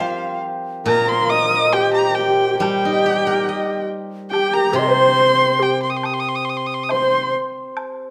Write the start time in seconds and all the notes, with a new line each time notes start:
Already playing: F3 C4 F4 G4 A#4 C5 D#5 F5
0.00 G4 C5, high woodblock, low woodblock
0.86 A#2 A#4 A#5, high woodblock
1.07 C5 C6
1.23 F5
1.30 D#5 D#6
1.66 A#4
1.73 G4 G5
1.94 A#5
2.11 A#4 G5
2.17 G4
2.55 G4 A#4
2.59 G3 G4 G5, high woodblock
2.85 D#4
3.06 G4
3.27 A#4
3.49 D#5
4.31 G4 G5, high woodblock
4.54 A#4 A#5
4.73 C3 C5 C6
4.79 D#5
4.88 C5
5.60 G4 G5
5.83 C6
5.90 D#6
5.97 C6
6.03 D#6, high woodblock
6.13 C6
6.20 D#6
6.29 C6
6.35 D#6
6.45 C6
6.49 D#6
6.57 C6
6.66 D#6
6.74 C6
6.83 D#6
6.89 C5 C6, high woodblock, low woodblock
6.93 C5
7.77 high woodblock